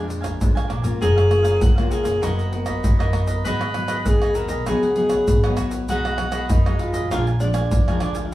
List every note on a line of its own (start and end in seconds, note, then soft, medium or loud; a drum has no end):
0.00 0.32 F2 medium
0.00 0.38 A#2 medium
0.00 0.37 F3 medium
0.00 0.37 G#3 medium
0.00 0.37 D4 medium
0.08 muted cavaquinho stroke soft
0.08 pandeiro medium
0.08 shaker medium
0.21 0.54 A#4 soft
0.21 0.53 F5 medium
0.21 0.52 G#5 medium
0.21 pandeiro medium
0.21 tamborim medium
0.21 shaker medium
0.21 surdo soft
0.41 0.99 F2 soft
0.41 0.55 F3 medium
0.41 0.70 F3 soft
0.41 0.70 G#3 soft
0.41 0.70 D4 medium
0.41 pandeiro medium
0.41 shaker medium
0.41 surdo medium
0.55 0.69 D3 medium
0.55 0.68 A#4 medium
0.55 0.68 F5 medium
0.55 0.69 G#5 medium
0.55 pandeiro soft
0.55 tamborim medium
0.55 shaker soft
0.68 0.84 A#2 medium
0.68 0.84 D4 soft
0.68 0.83 A#4 soft
0.68 0.82 F5 soft
0.68 0.81 G#5 soft
0.68 pandeiro medium
0.68 tamborim medium
0.82 1.03 G#2 medium
0.82 1.11 A#3 medium
0.82 1.11 C#4 medium
0.82 1.11 F4 medium
0.82 0.99 A#4 soft
0.82 0.99 F5 soft
0.82 0.98 G#5 soft
0.82 pandeiro medium
0.82 shaker medium
0.82 surdo soft
1.01 1.53 F#1 medium
1.01 1.59 F#3 medium
1.01 1.15 F#4 medium
1.01 1.63 G#4 loud
1.01 1.15 A#4 medium
1.01 1.16 C#5 medium
1.01 1.15 F5 medium
1.01 pandeiro medium
1.01 shaker medium
1.01 surdo medium
1.16 1.29 A#4 soft
1.16 1.29 C#5 soft
1.16 1.30 F5 soft
1.16 pandeiro soft
1.16 tamborim medium
1.16 shaker soft
1.29 1.72 A#3 medium
1.29 1.72 C#4 soft
1.29 1.72 F4 medium
1.29 muted cavaquinho stroke soft
1.29 pandeiro medium
1.29 tamborim medium
1.43 1.75 A#4 medium
1.43 1.75 C#5 medium
1.43 1.74 F5 medium
1.43 pandeiro medium
1.43 tamborim medium
1.43 shaker medium
1.61 2.01 C#2 medium
1.61 2.20 C#3 medium
1.61 1.93 F#4 medium
1.61 pandeiro medium
1.61 shaker medium
1.61 surdo loud
1.76 2.19 A#3 medium
1.76 2.19 C#4 medium
1.76 2.19 F4 medium
1.76 1.89 A#4 soft
1.76 1.90 C#5 soft
1.76 1.90 F5 soft
1.76 pandeiro soft
1.76 tamborim medium
1.76 shaker soft
1.90 2.06 F#4 soft
1.90 2.24 G#4 medium
1.90 2.04 A#4 soft
1.90 2.03 C#5 soft
1.90 2.02 F5 medium
1.90 pandeiro medium
1.90 shaker medium
1.90 surdo soft
2.03 2.20 F#1 medium
2.03 2.21 A#4 medium
2.03 2.20 C#5 medium
2.03 2.20 F5 medium
2.03 pandeiro medium
2.03 shaker medium
2.03 surdo soft
2.21 2.75 F#1 medium
2.21 2.81 F#3 medium
2.21 2.41 B3 medium
2.21 2.36 D#4 medium
2.21 2.42 D#4 medium
2.21 2.53 F#4 medium
2.21 2.37 A#4 medium
2.21 2.42 A#4 medium
2.21 2.37 B4 medium
2.21 2.37 D#5 medium
2.21 pandeiro medium
2.21 tamborim medium
2.21 shaker medium
2.21 surdo medium
2.38 2.52 A#4 soft
2.38 2.52 B4 soft
2.38 2.52 D#5 soft
2.38 pandeiro soft
2.38 shaker soft
2.52 2.82 B3 medium
2.52 2.82 D#4 medium
2.52 3.10 F#4 medium
2.52 2.82 A#4 medium
2.52 muted cavaquinho stroke soft
2.52 pandeiro medium
2.66 2.98 A#4 soft
2.66 2.97 B4 medium
2.66 2.97 D#5 medium
2.66 pandeiro medium
2.66 tamborim medium
2.66 shaker medium
2.66 surdo soft
2.84 3.10 F#2 medium
2.84 3.42 F#3 medium
2.84 pandeiro medium
2.84 shaker medium
2.84 surdo medium
2.99 3.41 B3 medium
2.99 3.41 D#4 medium
2.99 3.41 A#4 medium
2.99 3.13 A#4 medium
2.99 3.13 B4 medium
2.99 3.13 D#5 medium
2.99 pandeiro soft
2.99 tamborim medium
2.99 shaker soft
3.13 3.45 F#1 medium
3.13 3.28 D#4 soft
3.13 3.28 A#4 soft
3.13 3.28 B4 medium
3.13 3.26 D#5 medium
3.13 pandeiro medium
3.13 tamborim medium
3.13 surdo soft
3.27 3.44 A#4 soft
3.27 3.43 B4 soft
3.27 3.43 D#5 medium
3.27 pandeiro medium
3.27 shaker medium
3.27 surdo soft
3.45 3.97 G#1 medium
3.45 4.03 G#2 medium
3.45 3.63 F#3 medium
3.45 3.63 B3 medium
3.45 3.64 D#4 medium
3.45 3.59 F#4 medium
3.45 3.60 G#4 medium
3.45 4.08 B4 loud
3.45 3.60 B4 medium
3.45 3.60 D#5 medium
3.45 pandeiro medium
3.45 shaker medium
3.45 surdo medium
3.61 3.74 G#4 soft
3.61 3.74 B4 soft
3.61 3.74 D#5 medium
3.61 pandeiro soft
3.61 tamborim medium
3.61 shaker soft
3.74 4.04 F#3 medium
3.74 4.04 B3 medium
3.74 4.04 D#4 medium
3.74 muted cavaquinho stroke soft
3.74 pandeiro medium
3.74 tamborim medium
3.88 4.20 G#4 medium
3.88 4.19 B4 medium
3.88 4.19 D#5 medium
3.88 pandeiro medium
3.88 tamborim medium
3.88 shaker medium
4.06 4.45 D#2 loud
4.06 4.64 D#3 medium
4.06 4.37 G#4 medium
4.06 pandeiro medium
4.06 shaker medium
4.06 surdo medium
4.22 4.63 F#3 medium
4.22 4.63 B3 medium
4.22 4.63 D#4 medium
4.22 4.35 G#4 soft
4.22 4.36 B4 soft
4.22 4.36 D#5 soft
4.22 pandeiro soft
4.22 tamborim medium
4.22 shaker soft
4.35 4.50 F#4 soft
4.35 4.50 G#4 soft
4.35 4.69 A#4 medium
4.35 4.49 B4 soft
4.35 4.48 D#5 soft
4.35 pandeiro medium
4.35 shaker medium
4.35 surdo soft
4.49 4.63 B1 medium
4.49 4.66 G#4 medium
4.49 4.65 B4 medium
4.49 4.65 D#5 medium
4.49 pandeiro medium
4.49 shaker medium
4.49 surdo soft
4.66 5.19 C#2 medium
4.66 5.25 C#3 medium
4.66 4.85 F#3 medium
4.66 4.85 B3 medium
4.66 4.86 D#4 medium
4.66 4.81 F#4 medium
4.66 4.95 G#4 medium
4.66 4.81 B4 medium
4.66 4.82 C#5 medium
4.66 4.82 F#5 medium
4.66 pandeiro medium
4.66 tamborim medium
4.66 shaker medium
4.66 surdo medium
4.83 4.96 B4 soft
4.83 4.96 C#5 soft
4.83 4.96 F#5 soft
4.83 pandeiro soft
4.83 shaker soft
4.96 5.38 F#3 medium
4.96 5.38 B3 medium
4.96 5.38 D#4 medium
4.96 5.54 G#4 medium
4.96 muted cavaquinho stroke soft
4.96 pandeiro medium
5.09 5.42 B4 soft
5.09 5.42 C#5 medium
5.09 5.41 F#5 medium
5.09 pandeiro medium
5.09 tamborim medium
5.09 shaker medium
5.09 surdo soft
5.28 5.54 G#1 medium
5.28 5.86 G#2 soft
5.28 pandeiro medium
5.28 shaker medium
5.28 surdo medium
5.44 5.85 F#3 medium
5.44 5.85 B3 medium
5.44 5.85 D#4 medium
5.44 5.56 B4 medium
5.44 5.57 C#5 medium
5.44 5.57 F#5 medium
5.44 pandeiro soft
5.44 tamborim medium
5.44 shaker soft
5.57 5.89 C#2 medium
5.57 5.72 F#4 soft
5.57 5.72 B4 soft
5.57 5.71 C#5 soft
5.57 5.70 F#5 soft
5.57 pandeiro medium
5.57 tamborim medium
5.57 shaker medium
5.71 5.87 B4 soft
5.71 5.87 C#5 soft
5.71 5.86 F#5 soft
5.71 pandeiro medium
5.71 shaker medium
5.71 surdo soft
5.89 6.41 B1 medium
5.89 6.47 B2 medium
5.89 6.15 F#3 soft
5.89 6.15 G#3 medium
5.89 6.03 D#4 medium
5.89 6.15 D#4 medium
5.89 6.53 F#4 loud
5.89 6.03 G#4 medium
5.89 6.04 B4 medium
5.89 6.04 D#5 medium
5.89 pandeiro medium
5.89 shaker medium
5.89 surdo medium
6.05 6.17 G#4 soft
6.05 6.17 B4 soft
6.05 6.18 D#5 medium
6.05 pandeiro soft
6.05 tamborim medium
6.05 shaker soft
6.18 6.60 F#3 soft
6.18 6.60 G#3 medium
6.18 6.60 D#4 medium
6.18 muted cavaquinho stroke soft
6.18 pandeiro medium
6.18 tamborim medium
6.32 6.63 G#4 medium
6.32 6.63 B4 medium
6.32 6.62 D#5 medium
6.32 pandeiro medium
6.32 tamborim medium
6.32 shaker medium
6.49 6.89 F#2 medium
6.49 7.08 F#2 medium
6.49 6.80 D#4 medium
6.49 pandeiro medium
6.49 shaker medium
6.49 surdo loud
6.66 7.07 F#3 medium
6.66 7.07 G#3 medium
6.66 7.07 D#4 medium
6.66 6.78 G#4 soft
6.66 6.79 B4 soft
6.66 6.79 D#5 soft
6.66 pandeiro soft
6.66 tamborim medium
6.66 shaker soft
6.79 6.93 D#4 soft
6.79 7.08 F4 medium
6.79 6.94 G#4 soft
6.79 6.93 B4 medium
6.79 6.92 D#5 soft
6.79 pandeiro medium
6.79 surdo soft
6.93 7.07 A1 medium
6.93 7.09 G#4 medium
6.93 7.09 B4 medium
6.93 7.09 D#5 medium
6.93 pandeiro medium
6.93 shaker medium
6.93 surdo soft
7.11 7.63 A#1 medium
7.11 7.69 A#2 medium
7.11 7.29 F3 medium
7.11 7.29 G#3 medium
7.11 7.25 D4 medium
7.11 7.30 D4 medium
7.11 7.25 F4 loud
7.11 7.25 A#4 medium
7.11 7.25 F5 medium
7.11 7.26 G#5 medium
7.11 pandeiro medium
7.11 tamborim medium
7.11 shaker medium
7.11 surdo medium
7.27 7.40 A#4 soft
7.27 7.40 F5 soft
7.27 7.40 G#5 soft
7.27 pandeiro soft
7.27 shaker soft
7.40 7.69 F3 medium
7.40 7.69 G#3 medium
7.40 7.98 D4 medium
7.40 7.70 D4 medium
7.40 muted cavaquinho stroke soft
7.40 pandeiro medium
7.40 shaker medium
7.54 7.86 A#4 medium
7.54 7.85 F5 medium
7.54 7.84 G#5 medium
7.54 pandeiro medium
7.54 tamborim medium
7.54 shaker medium
7.54 surdo soft
7.71 7.98 F2 medium
7.71 8.30 F2 soft
7.71 pandeiro medium
7.71 shaker medium
7.71 surdo medium
7.88 8.28 F3 medium
7.88 8.29 G#3 medium
7.88 8.29 D4 medium
7.88 8.00 A#4 medium
7.88 8.01 F5 medium
7.88 8.01 G#5 medium
7.88 pandeiro soft
7.88 tamborim medium
7.88 shaker soft
8.00 8.33 D2 medium
8.00 8.15 D4 soft
8.00 8.28 D4 medium
8.00 8.15 A#4 soft
8.00 8.15 F5 soft
8.00 8.14 G#5 medium
8.00 pandeiro medium
8.00 tamborim medium
8.15 8.31 A#4 soft
8.15 8.31 F5 soft
8.15 8.30 G#5 soft
8.15 pandeiro medium
8.15 shaker medium
8.15 surdo soft
8.26 8.34 F4 medium